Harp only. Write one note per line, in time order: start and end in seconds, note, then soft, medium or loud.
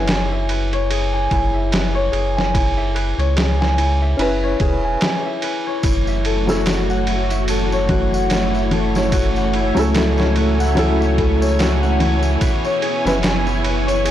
0.00 0.87 F#4 loud
0.00 0.90 G#4 loud
0.00 0.49 B4 medium
0.00 0.73 C#5 medium
0.00 0.31 E5 medium
0.00 0.28 F#5 medium
0.00 1.13 G#5 medium
0.08 1.31 E4 medium
0.32 1.54 E5 medium
0.49 1.71 B4 medium
0.73 1.95 C#5 loud
0.90 2.12 G#4 loud
1.13 2.36 G#5 medium
1.31 2.53 E4 medium
1.54 2.77 E5 medium
1.72 2.94 B4 medium
1.95 3.18 C#5 loud
2.12 3.36 G#4 loud
2.37 3.60 G#5 medium
2.54 3.77 E4 medium
2.77 4.02 E5 medium
2.95 4.19 B4 medium
3.19 4.43 C#5 loud
3.36 4.61 G#4 medium
3.61 4.84 G#5 medium
3.78 5.02 E4 medium
4.02 5.26 E5 medium
4.19 5.43 B4 medium
4.43 5.66 C#5 loud
4.61 6.32 G#4 medium
4.85 6.32 G#5 medium
5.02 5.84 E4 medium
5.26 6.08 E5 medium
5.43 7.48 B4 medium
5.67 6.49 C#5 medium
5.84 7.07 E4 medium
6.08 7.31 E5 medium
6.26 7.49 A4 medium
6.50 7.73 C#5 loud
6.66 7.90 F#4 medium
6.90 8.13 F#5 medium
7.07 8.30 E4 medium
7.31 8.54 E5 medium
7.50 8.72 A4 medium
7.73 8.96 C#5 loud
7.90 9.13 F#4 loud
8.14 9.37 F#5 medium
8.30 9.54 E4 medium
8.55 9.78 E5 medium
8.73 9.95 A4 medium
8.96 10.18 C#5 medium
9.13 10.36 F#4 loud
9.37 10.60 F#5 medium
9.55 10.77 E4 medium
9.78 11.00 E5 medium
9.95 11.18 A4 medium
10.19 11.41 C#5 loud
10.36 11.58 F#4 medium
10.60 11.82 F#5 medium
10.77 11.99 E4 medium
11.00 12.22 E5 medium
11.18 12.88 A4 medium
11.41 12.64 C#5 loud
11.59 14.02 F#4 loud
11.82 13.43 F#5 medium
12.00 13.23 E4 medium
12.23 13.46 E5 medium
12.41 13.63 B4 medium
12.65 13.87 C#5 loud
12.82 14.04 G#4 loud
13.06 14.11 G#5 medium
13.23 14.11 E4 medium
13.46 14.11 E5 medium
13.64 14.11 B4 medium
13.87 14.11 C#5 medium
14.04 14.11 G#4 loud